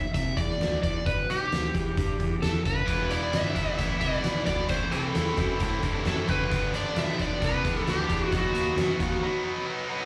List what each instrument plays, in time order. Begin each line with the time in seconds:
Already playing: electric slide guitar E5
0.14 fingered electric bass C2, electric slide guitar E5, kick, closed hi-hat
0.37 fingered electric bass E2, electric slide guitar D5, kick, closed hi-hat
0.50 snare
0.60 fingered electric bass D2, snare, closed hi-hat
0.83 fingered electric bass E2, electric slide guitar D5, kick, closed hi-hat
1.06 fingered electric bass G1, electric slide guitar B4, kick, closed hi-hat
1.30 fingered electric bass B1, electric slide guitar G4, closed hi-hat
1.52 fingered electric bass D2, snare, closed hi-hat
1.75 fingered electric bass E2, kick, closed hi-hat
1.97 fingered electric bass G2, kick, closed hi-hat
2.20 fingered electric bass E2, kick, closed hi-hat
2.42 fingered electric bass E2, electric slide guitar A4, snare, closed hi-hat
2.65 fingered electric bass F#1, electric slide guitar B4, kick, closed hi-hat
2.86 fingered electric bass E1, overdriven electric guitar E3 G3 B3 E4, kick, closed hi-hat
3.09 overdriven electric guitar E3 G3 B3 E4, electric slide guitar D5, closed hi-hat
3.31 fingered electric bass G1, overdriven electric guitar E3 G3 B3 E4, electric slide guitar E5, snare, closed hi-hat
3.54 overdriven electric guitar E3 G3 B3 E4, kick, closed hi-hat
3.77 fingered electric bass A1, overdriven electric guitar E3 G3 B3 E4, electric slide guitar E5, kick, closed hi-hat
4.00 fingered electric bass C2, overdriven electric guitar E3 G3 B3 E4, electric slide guitar D5, kick, closed hi-hat
4.13 snare
4.23 fingered electric bass B1, overdriven electric guitar E3 G3 B3 E4, snare, closed hi-hat
4.46 fingered electric bass D2, overdriven electric guitar E3 G3 B3 E4, electric slide guitar D5, kick, closed hi-hat
4.68 fingered electric bass A1, overdriven electric guitar A2 E3 A3 C4 E4, electric slide guitar C5, kick, closed hi-hat
4.91 fingered electric bass C2, overdriven electric guitar A2 E3 A3 C4 E4, electric slide guitar A4, closed hi-hat
5.13 fingered electric bass E2, overdriven electric guitar A2 E3 A3 C4 E4, snare, closed hi-hat
5.37 fingered electric bass F#2, overdriven electric guitar A2 E3 A3 C4 E4, kick, closed hi-hat
5.60 fingered electric bass A2, overdriven electric guitar A2 E3 A3 C4 E4, kick, closed hi-hat
5.83 fingered electric bass G2, overdriven electric guitar A2 E3 A3 C4 E4, kick, closed hi-hat
6.04 fingered electric bass F#2, overdriven electric guitar A2 E3 A3 C4 E4, electric slide guitar A4, snare, closed hi-hat
6.27 fingered electric bass F#1, overdriven electric guitar A2 E3 A3 C4 E4, electric slide guitar B4, kick, closed hi-hat
6.49 fingered electric bass G1, overdriven electric guitar G2 D3 G3 B3 D4, kick, closed hi-hat
6.73 overdriven electric guitar G2 D3 G3 B3 D4, electric slide guitar D5, closed hi-hat
6.96 fingered electric bass B1, overdriven electric guitar G2 D3 G3 B3 D4, electric slide guitar E5, snare, closed hi-hat
7.17 overdriven electric guitar G2 D3 G3 B3 D4, electric slide guitar D5, kick, closed hi-hat
7.40 fingered electric bass C2, overdriven electric guitar G2 D3 G3 B3 D4, kick, closed hi-hat
7.44 electric slide guitar B4
7.64 fingered electric bass E2, overdriven electric guitar G2 D3 G3 B3 D4, kick, closed hi-hat
7.77 snare
7.86 fingered electric bass D2, overdriven electric guitar G2 D3 G3 B3 D4, snare, closed hi-hat
7.90 electric slide guitar G4
8.09 fingered electric bass E2, overdriven electric guitar G2 D3 G3 B3 D4, kick, closed hi-hat
8.31 fingered electric bass B1, overdriven electric guitar B2 F#3 B3 D#4, kick, closed hi-hat
8.37 electric slide guitar F#4
8.52 fingered electric bass D#2, overdriven electric guitar B2 F#3 B3 D#4, closed hi-hat
8.76 fingered electric bass F#2, overdriven electric guitar B2 F#3 B3 D#4, snare, closed hi-hat
8.99 fingered electric bass D#2, overdriven electric guitar B2 F#3 B3 D#4, kick, closed hi-hat
9.22 overdriven electric guitar B2 F#3 B3 D#4
9.43 overdriven electric guitar B2 F#3 B3 D#4
9.65 overdriven electric guitar B2 F#3 B3 D#4
9.89 overdriven electric guitar B2 F#3 B3 D#4